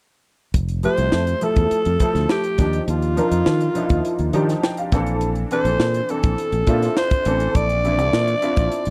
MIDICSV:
0, 0, Header, 1, 6, 480
1, 0, Start_track
1, 0, Key_signature, -1, "major"
1, 0, Tempo, 583658
1, 447, Time_signature, 4, 2, 24, 8
1, 7321, End_track
2, 0, Start_track
2, 0, Title_t, "Alto saxophone"
2, 0, Program_c, 0, 65
2, 701, Note_on_c, 0, 72, 99
2, 1184, Note_on_c, 0, 69, 86
2, 1196, Note_off_c, 0, 72, 0
2, 1896, Note_off_c, 0, 69, 0
2, 1900, Note_on_c, 0, 67, 84
2, 2341, Note_off_c, 0, 67, 0
2, 2386, Note_on_c, 0, 65, 81
2, 3785, Note_off_c, 0, 65, 0
2, 4546, Note_on_c, 0, 72, 92
2, 5021, Note_on_c, 0, 69, 80
2, 5033, Note_off_c, 0, 72, 0
2, 5729, Note_off_c, 0, 69, 0
2, 5734, Note_on_c, 0, 72, 94
2, 6215, Note_on_c, 0, 74, 104
2, 6228, Note_off_c, 0, 72, 0
2, 7321, Note_off_c, 0, 74, 0
2, 7321, End_track
3, 0, Start_track
3, 0, Title_t, "Grand piano"
3, 0, Program_c, 1, 0
3, 613, Control_c, 1, 64, 127
3, 684, Note_on_c, 1, 53, 67
3, 688, Note_on_c, 1, 57, 61
3, 691, Note_on_c, 1, 64, 61
3, 692, Note_on_c, 1, 67, 73
3, 1079, Note_off_c, 1, 53, 0
3, 1081, Note_off_c, 1, 57, 0
3, 1083, Note_off_c, 1, 64, 0
3, 1083, Note_off_c, 1, 67, 0
3, 1162, Note_on_c, 1, 53, 60
3, 1164, Note_on_c, 1, 57, 54
3, 1168, Note_on_c, 1, 64, 56
3, 1172, Note_on_c, 1, 69, 67
3, 1558, Note_off_c, 1, 53, 0
3, 1559, Note_off_c, 1, 57, 0
3, 1561, Note_off_c, 1, 64, 0
3, 1563, Note_off_c, 1, 69, 0
3, 1645, Note_on_c, 1, 53, 73
3, 1645, Note_on_c, 1, 57, 62
3, 1649, Note_on_c, 1, 64, 62
3, 1653, Note_on_c, 1, 69, 72
3, 2040, Note_off_c, 1, 53, 0
3, 2040, Note_off_c, 1, 57, 0
3, 2041, Note_off_c, 1, 64, 0
3, 2043, Note_off_c, 1, 69, 0
3, 2121, Note_on_c, 1, 53, 64
3, 2123, Note_on_c, 1, 62, 63
3, 2125, Note_on_c, 1, 63, 62
3, 2131, Note_on_c, 1, 67, 71
3, 2140, Control_c, 1, 64, 0
3, 2305, Control_c, 1, 64, 127
3, 2517, Note_off_c, 1, 53, 0
3, 2518, Note_off_c, 1, 62, 0
3, 2520, Note_off_c, 1, 63, 0
3, 2522, Note_off_c, 1, 67, 0
3, 2602, Note_on_c, 1, 53, 68
3, 2603, Note_on_c, 1, 62, 59
3, 2609, Note_on_c, 1, 63, 62
3, 2610, Note_on_c, 1, 70, 78
3, 2998, Note_off_c, 1, 53, 0
3, 2999, Note_off_c, 1, 62, 0
3, 3002, Note_off_c, 1, 63, 0
3, 3002, Note_off_c, 1, 70, 0
3, 3082, Note_on_c, 1, 53, 70
3, 3083, Note_on_c, 1, 62, 68
3, 3088, Note_on_c, 1, 63, 71
3, 3092, Note_on_c, 1, 64, 66
3, 3144, Note_off_c, 1, 64, 0
3, 3145, Note_on_c, 1, 65, 77
3, 3478, Note_off_c, 1, 53, 0
3, 3479, Note_off_c, 1, 62, 0
3, 3481, Note_off_c, 1, 63, 0
3, 3510, Note_off_c, 1, 65, 0
3, 3563, Note_on_c, 1, 53, 82
3, 3567, Note_on_c, 1, 62, 73
3, 3568, Note_on_c, 1, 82, 61
3, 3572, Note_on_c, 1, 63, 72
3, 3576, Note_on_c, 1, 67, 98
3, 3680, Note_off_c, 1, 82, 0
3, 3687, Note_on_c, 1, 81, 64
3, 3799, Note_off_c, 1, 81, 0
3, 3810, Note_on_c, 1, 79, 65
3, 3921, Note_off_c, 1, 79, 0
3, 3932, Note_on_c, 1, 77, 62
3, 3959, Note_off_c, 1, 53, 0
3, 3961, Note_off_c, 1, 62, 0
3, 3963, Note_off_c, 1, 63, 0
3, 3965, Note_off_c, 1, 67, 0
3, 4041, Note_off_c, 1, 77, 0
3, 4048, Note_on_c, 1, 52, 83
3, 4052, Note_on_c, 1, 60, 75
3, 4053, Note_on_c, 1, 77, 66
3, 4054, Note_on_c, 1, 62, 75
3, 4059, Control_c, 1, 64, 0
3, 4059, Note_on_c, 1, 69, 93
3, 4212, Control_c, 1, 64, 127
3, 4274, Note_off_c, 1, 77, 0
3, 4441, Note_off_c, 1, 52, 0
3, 4443, Note_off_c, 1, 60, 0
3, 4444, Note_off_c, 1, 62, 0
3, 4447, Note_off_c, 1, 69, 0
3, 4532, Note_on_c, 1, 52, 71
3, 4534, Note_on_c, 1, 60, 65
3, 4538, Note_on_c, 1, 62, 67
3, 4541, Note_on_c, 1, 69, 77
3, 4923, Note_off_c, 1, 52, 0
3, 4924, Note_off_c, 1, 60, 0
3, 4926, Note_off_c, 1, 62, 0
3, 4928, Note_off_c, 1, 69, 0
3, 5008, Note_on_c, 1, 52, 63
3, 5013, Note_on_c, 1, 60, 57
3, 5014, Note_on_c, 1, 62, 55
3, 5019, Note_on_c, 1, 69, 69
3, 5401, Note_off_c, 1, 52, 0
3, 5404, Note_off_c, 1, 60, 0
3, 5404, Note_off_c, 1, 62, 0
3, 5407, Note_off_c, 1, 69, 0
3, 5488, Note_on_c, 1, 64, 70
3, 5494, Note_on_c, 1, 60, 65
3, 5496, Note_on_c, 1, 62, 66
3, 5497, Note_on_c, 1, 65, 80
3, 5881, Note_off_c, 1, 64, 0
3, 5884, Note_off_c, 1, 60, 0
3, 5886, Note_off_c, 1, 62, 0
3, 5886, Note_off_c, 1, 65, 0
3, 5967, Note_on_c, 1, 52, 70
3, 5974, Note_on_c, 1, 60, 64
3, 5977, Note_on_c, 1, 62, 62
3, 5979, Note_on_c, 1, 69, 75
3, 6361, Note_off_c, 1, 52, 0
3, 6364, Note_off_c, 1, 60, 0
3, 6366, Note_off_c, 1, 62, 0
3, 6367, Note_off_c, 1, 69, 0
3, 6447, Note_on_c, 1, 52, 66
3, 6452, Note_on_c, 1, 60, 61
3, 6454, Note_on_c, 1, 62, 61
3, 6457, Note_on_c, 1, 64, 74
3, 6841, Note_off_c, 1, 52, 0
3, 6843, Note_off_c, 1, 60, 0
3, 6844, Note_off_c, 1, 62, 0
3, 6846, Note_off_c, 1, 64, 0
3, 6923, Note_on_c, 1, 64, 72
3, 6927, Note_on_c, 1, 60, 65
3, 6930, Note_on_c, 1, 62, 69
3, 6933, Note_on_c, 1, 65, 77
3, 7319, Note_off_c, 1, 64, 0
3, 7321, Note_off_c, 1, 60, 0
3, 7321, Note_off_c, 1, 62, 0
3, 7321, Note_off_c, 1, 65, 0
3, 7321, End_track
4, 0, Start_track
4, 0, Title_t, "Fretless electric bass"
4, 0, Program_c, 2, 35
4, 444, Note_on_c, 2, 29, 90
4, 699, Note_off_c, 2, 29, 0
4, 807, Note_on_c, 2, 36, 76
4, 892, Note_off_c, 2, 36, 0
4, 927, Note_on_c, 2, 41, 82
4, 1097, Note_off_c, 2, 41, 0
4, 1288, Note_on_c, 2, 40, 75
4, 1373, Note_off_c, 2, 40, 0
4, 1530, Note_on_c, 2, 41, 78
4, 1614, Note_off_c, 2, 41, 0
4, 1767, Note_on_c, 2, 38, 79
4, 1852, Note_off_c, 2, 38, 0
4, 2127, Note_on_c, 2, 39, 93
4, 2297, Note_off_c, 2, 39, 0
4, 2366, Note_on_c, 2, 39, 89
4, 2620, Note_off_c, 2, 39, 0
4, 2726, Note_on_c, 2, 41, 71
4, 2811, Note_off_c, 2, 41, 0
4, 2850, Note_on_c, 2, 51, 85
4, 3019, Note_off_c, 2, 51, 0
4, 3207, Note_on_c, 2, 39, 81
4, 3292, Note_off_c, 2, 39, 0
4, 3448, Note_on_c, 2, 39, 74
4, 3533, Note_off_c, 2, 39, 0
4, 3563, Note_on_c, 2, 51, 94
4, 3735, Note_off_c, 2, 51, 0
4, 4048, Note_on_c, 2, 34, 83
4, 4471, Note_off_c, 2, 34, 0
4, 4644, Note_on_c, 2, 34, 81
4, 4730, Note_off_c, 2, 34, 0
4, 4764, Note_on_c, 2, 46, 92
4, 4935, Note_off_c, 2, 46, 0
4, 5130, Note_on_c, 2, 34, 80
4, 5214, Note_off_c, 2, 34, 0
4, 5366, Note_on_c, 2, 34, 82
4, 5451, Note_off_c, 2, 34, 0
4, 5486, Note_on_c, 2, 46, 88
4, 5656, Note_off_c, 2, 46, 0
4, 5970, Note_on_c, 2, 33, 86
4, 6139, Note_off_c, 2, 33, 0
4, 6209, Note_on_c, 2, 34, 92
4, 6564, Note_off_c, 2, 34, 0
4, 6564, Note_on_c, 2, 36, 76
4, 6650, Note_off_c, 2, 36, 0
4, 6687, Note_on_c, 2, 46, 82
4, 6857, Note_off_c, 2, 46, 0
4, 7050, Note_on_c, 2, 34, 69
4, 7134, Note_off_c, 2, 34, 0
4, 7292, Note_on_c, 2, 34, 72
4, 7321, Note_off_c, 2, 34, 0
4, 7321, End_track
5, 0, Start_track
5, 0, Title_t, "Muted fretless electric bass strokes"
5, 1409, Note_on_c, 9, 29, 41
5, 1492, Note_off_c, 9, 29, 0
5, 7321, End_track
6, 0, Start_track
6, 0, Title_t, "Drums"
6, 445, Note_on_c, 9, 42, 80
6, 446, Note_on_c, 9, 36, 89
6, 527, Note_off_c, 9, 42, 0
6, 529, Note_off_c, 9, 36, 0
6, 563, Note_on_c, 9, 42, 44
6, 645, Note_off_c, 9, 42, 0
6, 684, Note_on_c, 9, 42, 57
6, 767, Note_off_c, 9, 42, 0
6, 801, Note_on_c, 9, 42, 54
6, 883, Note_off_c, 9, 42, 0
6, 922, Note_on_c, 9, 38, 90
6, 1004, Note_off_c, 9, 38, 0
6, 1045, Note_on_c, 9, 42, 50
6, 1127, Note_off_c, 9, 42, 0
6, 1161, Note_on_c, 9, 42, 62
6, 1244, Note_off_c, 9, 42, 0
6, 1281, Note_on_c, 9, 42, 44
6, 1287, Note_on_c, 9, 36, 86
6, 1364, Note_off_c, 9, 42, 0
6, 1369, Note_off_c, 9, 36, 0
6, 1407, Note_on_c, 9, 42, 75
6, 1489, Note_off_c, 9, 42, 0
6, 1524, Note_on_c, 9, 42, 48
6, 1606, Note_off_c, 9, 42, 0
6, 1642, Note_on_c, 9, 42, 69
6, 1647, Note_on_c, 9, 36, 76
6, 1724, Note_off_c, 9, 42, 0
6, 1729, Note_off_c, 9, 36, 0
6, 1771, Note_on_c, 9, 38, 31
6, 1772, Note_on_c, 9, 42, 41
6, 1853, Note_off_c, 9, 38, 0
6, 1854, Note_off_c, 9, 42, 0
6, 1886, Note_on_c, 9, 38, 95
6, 1969, Note_off_c, 9, 38, 0
6, 2004, Note_on_c, 9, 42, 53
6, 2087, Note_off_c, 9, 42, 0
6, 2122, Note_on_c, 9, 42, 78
6, 2128, Note_on_c, 9, 36, 91
6, 2130, Note_on_c, 9, 38, 27
6, 2204, Note_off_c, 9, 42, 0
6, 2210, Note_off_c, 9, 36, 0
6, 2212, Note_off_c, 9, 38, 0
6, 2246, Note_on_c, 9, 42, 46
6, 2328, Note_off_c, 9, 42, 0
6, 2367, Note_on_c, 9, 42, 76
6, 2449, Note_off_c, 9, 42, 0
6, 2486, Note_on_c, 9, 42, 41
6, 2569, Note_off_c, 9, 42, 0
6, 2609, Note_on_c, 9, 42, 59
6, 2691, Note_off_c, 9, 42, 0
6, 2726, Note_on_c, 9, 42, 55
6, 2808, Note_off_c, 9, 42, 0
6, 2846, Note_on_c, 9, 38, 96
6, 2928, Note_off_c, 9, 38, 0
6, 2965, Note_on_c, 9, 42, 52
6, 3047, Note_off_c, 9, 42, 0
6, 3085, Note_on_c, 9, 42, 60
6, 3168, Note_off_c, 9, 42, 0
6, 3202, Note_on_c, 9, 42, 46
6, 3209, Note_on_c, 9, 36, 93
6, 3285, Note_off_c, 9, 42, 0
6, 3291, Note_off_c, 9, 36, 0
6, 3329, Note_on_c, 9, 42, 78
6, 3411, Note_off_c, 9, 42, 0
6, 3443, Note_on_c, 9, 42, 46
6, 3525, Note_off_c, 9, 42, 0
6, 3563, Note_on_c, 9, 42, 73
6, 3645, Note_off_c, 9, 42, 0
6, 3692, Note_on_c, 9, 38, 31
6, 3693, Note_on_c, 9, 42, 42
6, 3774, Note_off_c, 9, 38, 0
6, 3776, Note_off_c, 9, 42, 0
6, 3811, Note_on_c, 9, 38, 97
6, 3894, Note_off_c, 9, 38, 0
6, 3925, Note_on_c, 9, 42, 52
6, 4008, Note_off_c, 9, 42, 0
6, 4044, Note_on_c, 9, 42, 77
6, 4049, Note_on_c, 9, 36, 98
6, 4053, Note_on_c, 9, 38, 28
6, 4127, Note_off_c, 9, 42, 0
6, 4131, Note_off_c, 9, 36, 0
6, 4135, Note_off_c, 9, 38, 0
6, 4165, Note_on_c, 9, 42, 43
6, 4248, Note_off_c, 9, 42, 0
6, 4284, Note_on_c, 9, 42, 76
6, 4366, Note_off_c, 9, 42, 0
6, 4403, Note_on_c, 9, 42, 41
6, 4486, Note_off_c, 9, 42, 0
6, 4530, Note_on_c, 9, 42, 58
6, 4612, Note_off_c, 9, 42, 0
6, 4647, Note_on_c, 9, 42, 51
6, 4729, Note_off_c, 9, 42, 0
6, 4768, Note_on_c, 9, 38, 97
6, 4850, Note_off_c, 9, 38, 0
6, 4887, Note_on_c, 9, 42, 52
6, 4969, Note_off_c, 9, 42, 0
6, 5007, Note_on_c, 9, 42, 60
6, 5089, Note_off_c, 9, 42, 0
6, 5124, Note_on_c, 9, 42, 44
6, 5129, Note_on_c, 9, 36, 93
6, 5206, Note_off_c, 9, 42, 0
6, 5212, Note_off_c, 9, 36, 0
6, 5249, Note_on_c, 9, 42, 80
6, 5331, Note_off_c, 9, 42, 0
6, 5365, Note_on_c, 9, 42, 46
6, 5447, Note_off_c, 9, 42, 0
6, 5483, Note_on_c, 9, 42, 70
6, 5488, Note_on_c, 9, 36, 77
6, 5565, Note_off_c, 9, 42, 0
6, 5570, Note_off_c, 9, 36, 0
6, 5610, Note_on_c, 9, 38, 30
6, 5612, Note_on_c, 9, 42, 42
6, 5693, Note_off_c, 9, 38, 0
6, 5694, Note_off_c, 9, 42, 0
6, 5729, Note_on_c, 9, 38, 96
6, 5811, Note_off_c, 9, 38, 0
6, 5844, Note_on_c, 9, 42, 51
6, 5850, Note_on_c, 9, 36, 90
6, 5926, Note_off_c, 9, 42, 0
6, 5932, Note_off_c, 9, 36, 0
6, 5964, Note_on_c, 9, 42, 82
6, 6047, Note_off_c, 9, 42, 0
6, 6086, Note_on_c, 9, 42, 46
6, 6169, Note_off_c, 9, 42, 0
6, 6208, Note_on_c, 9, 42, 82
6, 6209, Note_on_c, 9, 36, 99
6, 6290, Note_off_c, 9, 42, 0
6, 6291, Note_off_c, 9, 36, 0
6, 6329, Note_on_c, 9, 42, 43
6, 6411, Note_off_c, 9, 42, 0
6, 6453, Note_on_c, 9, 42, 59
6, 6535, Note_off_c, 9, 42, 0
6, 6569, Note_on_c, 9, 42, 54
6, 6651, Note_off_c, 9, 42, 0
6, 6688, Note_on_c, 9, 38, 98
6, 6771, Note_off_c, 9, 38, 0
6, 6807, Note_on_c, 9, 42, 50
6, 6890, Note_off_c, 9, 42, 0
6, 6926, Note_on_c, 9, 42, 61
6, 7008, Note_off_c, 9, 42, 0
6, 7043, Note_on_c, 9, 42, 46
6, 7049, Note_on_c, 9, 36, 95
6, 7125, Note_off_c, 9, 42, 0
6, 7131, Note_off_c, 9, 36, 0
6, 7168, Note_on_c, 9, 42, 76
6, 7250, Note_off_c, 9, 42, 0
6, 7281, Note_on_c, 9, 42, 47
6, 7321, Note_off_c, 9, 42, 0
6, 7321, End_track
0, 0, End_of_file